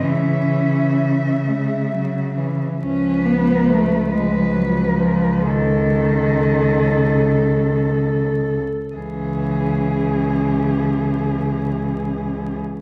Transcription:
0.03 2.58 C#3 soft
0.03 1.33 E3 soft
0.03 1.46 C#4 soft
0.03 2.63 E5 soft
1.45 1.93 G#3 soft
1.91 2.39 F#3 soft
2.37 2.82 E3 soft
2.82 8.59 C#2 soft
2.82 4.09 F3 soft
2.82 3.26 C#4 medium
2.82 4.09 B4 soft
3.25 3.70 B3 medium
3.69 4.11 A3 medium
4.11 5.45 F3 soft
4.11 4.57 G#3 medium
4.11 5.45 B4 soft
4.55 5.01 F#3 medium
5.00 5.48 F3 medium
5.46 8.59 C#3 soft
5.46 8.27 D#3 medium
5.46 8.60 A4 soft
8.95 12.57 C#2 soft
8.95 12.56 C#3 soft
8.95 12.57 E3 soft
8.95 12.56 G#4 soft

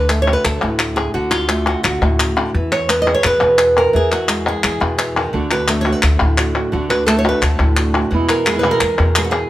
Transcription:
0.00 0.34 D2 medium
0.00 1.13 D3 medium
0.00 0.10 B4 loud
0.09 1.13 A3 medium
0.09 0.22 A4 loud
0.09 clap medium
0.22 0.33 C#5 loud
0.28 0.96 F#4 soft
0.33 0.44 B4 medium
0.44 0.59 D2 medium
0.44 1.30 A4 medium
0.44 clap medium
0.62 1.07 D2 medium
0.62 1.13 A2 medium
0.79 clap medium
0.96 1.14 G#4 medium
1.14 1.73 D2 medium
1.14 2.19 D3 medium
1.14 1.66 F#4 medium
1.31 2.01 F4 medium
1.31 clap medium
1.49 2.52 A3 medium
1.49 clap medium
1.67 1.82 F#4 medium
1.83 1.99 D2 medium
1.83 2.54 F#4 medium
1.83 clap medium
2.01 2.46 D2 medium
2.01 2.52 A2 medium
2.20 2.36 C#3 medium
2.20 clap medium
2.36 2.54 D3 medium
2.54 3.13 E2 medium
2.54 3.92 E3 medium
2.72 2.89 C#5 loud
2.72 clap medium
2.89 3.91 B3 medium
2.89 3.01 B4 loud
2.89 clap medium
3.02 3.13 D#5 loud
3.06 3.76 G#4 soft
3.06 clap soft
3.14 3.25 C#5 loud
3.24 3.39 E2 medium
3.24 3.95 B4 loud
3.24 clap medium
3.40 3.86 E2 medium
3.40 3.91 B2 medium
3.58 clap medium
3.78 4.29 A#4 loud
3.93 4.53 E2 medium
3.93 4.97 E3 medium
3.93 4.12 G#4 medium
4.12 4.47 F#4 medium
4.12 clap medium
4.28 5.33 G#3 medium
4.28 clap medium
4.48 4.64 G#4 medium
4.64 4.78 E2 medium
4.64 5.34 G#4 medium
4.64 clap medium
4.80 5.25 E2 medium
4.80 5.31 B2 medium
4.98 5.16 E3 medium
4.98 clap medium
5.17 5.34 D#3 medium
5.17 clap medium
5.33 5.92 D2 medium
5.33 5.50 D3 medium
5.33 6.70 D3 medium
5.33 5.50 A3 medium
5.33 5.51 D4 medium
5.33 5.50 F#4 medium
5.51 5.68 A3 soft
5.51 5.68 D4 soft
5.51 5.68 F#4 soft
5.51 5.70 B4 medium
5.51 clap medium
5.68 5.85 D3 soft
5.68 6.71 A3 medium
5.68 5.85 A3 soft
5.68 5.86 D4 medium
5.68 5.85 F#4 soft
5.68 5.80 A4 loud
5.68 clap medium
5.81 5.92 C#5 loud
5.86 6.03 A3 soft
5.86 6.03 D4 soft
5.86 6.71 F#4 soft
5.86 6.03 F#4 soft
5.92 6.03 B4 medium
6.02 6.18 D2 medium
6.02 6.90 A4 medium
6.02 muted nylon-string guitar stroke medium
6.02 clap medium
6.20 6.65 D2 medium
6.20 6.70 A2 medium
6.38 6.55 A3 soft
6.38 6.55 D4 soft
6.38 6.53 F#4 soft
6.38 clap medium
6.55 6.72 A3 soft
6.55 6.72 D4 soft
6.55 6.72 F#4 soft
6.55 clap soft
6.72 7.32 D2 medium
6.72 8.09 D3 medium
6.72 6.89 D3 medium
6.72 6.90 A3 medium
6.72 6.89 D4 medium
6.72 6.88 F#4 medium
6.89 7.07 A3 soft
6.89 7.07 D4 soft
6.89 7.06 F#4 soft
6.89 7.06 B4 loud
6.89 clap medium
7.06 7.24 D3 soft
7.06 8.09 A3 medium
7.06 7.25 A3 soft
7.06 7.25 D4 soft
7.06 7.24 F#4 medium
7.06 7.18 A4 loud
7.06 clap medium
7.19 7.28 C#5 loud
7.25 7.43 A3 soft
7.25 7.42 D4 soft
7.25 7.42 F#4 soft
7.25 8.10 F#4 soft
7.25 7.41 B4 medium
7.41 7.57 D2 medium
7.41 8.11 A4 medium
7.41 muted nylon-string guitar stroke medium
7.41 clap medium
7.59 8.03 D2 medium
7.59 8.10 A2 medium
7.77 7.95 A3 soft
7.77 7.94 D4 soft
7.77 7.94 F#4 soft
7.77 clap medium
7.94 8.12 A3 soft
7.94 8.12 D4 soft
7.94 8.11 F#4 soft
7.94 clap medium
8.11 8.70 E2 medium
8.11 8.46 B2 medium
8.11 9.48 E3 medium
8.11 8.46 E3 medium
8.11 8.47 G#3 medium
8.11 8.46 B3 medium
8.11 8.45 E4 medium
8.29 8.58 A#4 medium
8.29 clap medium
8.45 9.50 G#3 medium
8.45 8.50 G#3 soft
8.45 8.50 B3 soft
8.45 8.50 E4 soft
8.45 8.63 G#4 medium
8.45 clap medium
8.50 8.53 E3 soft
8.50 8.54 G#3 soft
8.50 8.54 B3 soft
8.50 8.55 E4 medium
8.54 8.58 E3 medium
8.54 8.58 G#3 medium
8.54 8.58 B3 medium
8.54 8.59 E4 medium
8.59 8.62 E3 medium
8.59 8.63 G#3 medium
8.59 8.63 B3 medium
8.59 8.64 E4 medium
8.59 8.70 B4 medium
8.63 8.80 B2 medium
8.63 8.80 E3 medium
8.63 8.80 G#3 medium
8.63 8.80 B3 medium
8.63 8.81 E4 medium
8.63 8.81 G#4 soft
8.63 clap medium
8.71 9.50 A#4 medium
8.81 8.96 E2 medium
8.81 9.18 G#4 medium
8.81 muted nylon-string guitar stroke medium
8.81 clap medium
8.98 9.43 E2 medium
8.98 9.49 B2 medium
9.15 9.50 E3 soft
9.15 9.50 G#3 soft
9.15 9.50 B3 soft
9.15 9.50 E4 medium
9.15 9.24 G#4 medium
9.15 clap medium
9.24 9.31 F#4 medium
9.31 9.50 G#4 medium

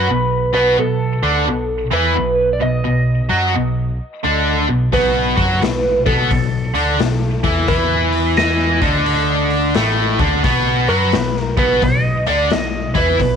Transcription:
0.00 0.53 B4 medium
0.09 0.51 B1 medium
0.09 0.45 B2 medium
0.53 0.77 B1 medium
0.53 0.77 B2 medium
0.53 0.78 B3 medium
0.53 0.79 B4 medium
0.78 1.20 B1 medium
0.78 1.14 B2 medium
0.78 1.89 A4 medium
1.23 1.46 D2 medium
1.23 1.47 D3 medium
1.23 1.47 D4 loud
1.47 1.90 B1 medium
1.47 1.83 B2 medium
1.91 2.15 E2 medium
1.91 2.15 E3 medium
1.91 2.16 E4 medium
1.91 2.49 B4 medium
2.16 2.59 B1 medium
2.16 2.52 B2 medium
2.53 2.62 D5 medium
2.61 2.85 B1 medium
2.61 2.81 B2 medium
2.61 4.65 D#5 medium
2.85 3.28 B1 medium
2.85 3.21 B2 medium
3.30 3.54 F#2 medium
3.30 3.54 F#3 medium
3.30 3.54 F#4 loud
3.55 3.97 B1 medium
3.55 3.91 B2 medium
4.24 4.66 D2 medium
4.24 4.67 D3 medium
4.24 4.67 D4 medium
4.69 4.92 B1 medium
4.69 4.88 B2 medium
4.92 5.34 B1 medium
4.92 5.36 B2 medium
4.92 5.36 B3 loud
4.92 6.03 B4 medium
4.92 kick medium
4.92 open hi-hat medium
5.37 5.61 F#2 medium
5.37 5.61 F#3 medium
5.37 5.61 F#4 medium
5.37 kick medium
5.37 open hi-hat soft
5.61 6.03 B1 medium
5.61 5.97 B2 medium
5.61 snare loud
5.61 open hi-hat medium
6.06 6.29 B1 medium
6.06 6.29 B2 medium
6.06 6.30 B3 medium
6.06 7.68 A4 medium
6.06 kick loud
6.06 open hi-hat soft
6.30 6.73 B1 medium
6.30 6.66 B2 medium
6.30 kick medium
6.30 open hi-hat medium
6.75 6.98 D2 medium
6.75 6.99 D3 medium
6.75 6.99 D4 medium
6.75 open hi-hat soft
6.99 7.41 B1 medium
6.99 7.35 B2 medium
6.99 snare loud
6.99 open hi-hat medium
7.44 7.67 E2 medium
7.44 7.67 E3 medium
7.44 7.68 E4 medium
7.44 kick loud
7.44 open hi-hat medium
7.68 8.78 E2 medium
7.68 8.81 E3 medium
7.68 8.81 E4 medium
7.68 8.34 B4 medium
7.68 kick medium
7.68 open hi-hat medium
8.12 open hi-hat medium
8.37 10.16 D#5 medium
8.37 snare loud
8.37 open hi-hat medium
8.82 9.72 D2 medium
8.82 9.75 D3 medium
8.82 9.75 D4 medium
8.82 kick medium
8.82 open hi-hat medium
9.06 open hi-hat medium
9.50 open hi-hat medium
9.74 10.17 A1 medium
9.74 10.19 A2 medium
9.74 10.19 A3 medium
9.74 snare loud
9.74 open hi-hat medium
10.19 10.43 D2 medium
10.19 10.44 D3 medium
10.19 10.44 D4 loud
10.19 kick loud
10.19 open hi-hat soft
10.44 10.86 B1 medium
10.44 10.87 B2 medium
10.44 10.88 B3 loud
10.44 kick loud
10.44 open hi-hat medium
10.88 11.12 F#2 medium
10.88 11.13 F#3 medium
10.88 11.13 F#4 loud
10.88 11.39 B4 medium
10.88 open hi-hat soft
11.12 11.55 B1 medium
11.12 11.49 B2 medium
11.12 snare loud
11.12 open hi-hat medium
11.36 11.58 A#4 medium
11.36 snare soft
11.57 11.80 B1 medium
11.57 11.81 B2 loud
11.57 11.82 B3 loud
11.57 11.84 B4 medium
11.57 kick loud
11.57 open hi-hat soft
11.82 12.24 B1 medium
11.82 12.18 B2 medium
11.82 12.29 D#5 loud
11.82 kick medium
11.82 open hi-hat medium
12.26 12.50 D2 medium
12.26 12.50 D3 medium
12.26 12.51 D4 medium
12.26 12.52 D5 medium
12.26 open hi-hat medium
12.50 12.93 B1 medium
12.50 12.86 B2 medium
12.50 12.97 D#5 medium
12.50 snare loud
12.50 open hi-hat medium
12.94 13.18 E2 medium
12.94 13.18 E3 medium
12.94 13.19 E4 loud
12.94 13.19 B4 medium
12.94 kick loud
12.94 open hi-hat soft
13.19 13.36 B1 medium
13.19 13.36 B2 medium
13.19 13.36 B4 medium
13.19 kick medium
13.19 open hi-hat medium

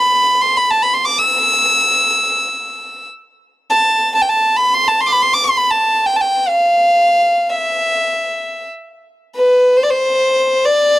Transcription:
0.00 0.43 B5 medium
0.42 0.58 C6 medium
0.57 0.72 B5 medium
0.70 0.84 A5 medium
0.82 0.95 B5 medium
0.94 1.06 C6 medium
1.05 1.20 D6 medium
1.18 3.05 E6 medium
3.70 4.12 A5 medium
4.15 4.23 A5 medium
4.22 4.30 G5 medium
4.29 4.58 A5 medium
4.57 4.76 B5 medium
4.74 4.89 C6 medium
4.88 5.02 A5 medium
5.00 5.07 C6 medium
5.06 5.14 C6 medium
5.06 5.08 D6 medium
5.12 5.24 B5 medium
5.22 5.35 C6 medium
5.33 5.46 D6 medium
5.44 5.58 C6 medium
5.57 5.72 B5 medium
5.70 6.08 A5 medium
6.06 6.18 G5 medium
6.16 6.23 A5 medium
6.21 6.49 G5 medium
6.47 7.51 F5 medium
7.50 8.66 E5 medium
9.37 9.78 B4 medium
9.77 9.85 C5 medium
9.83 9.91 D5 medium
9.90 10.67 C5 medium
10.65 10.99 D5 medium

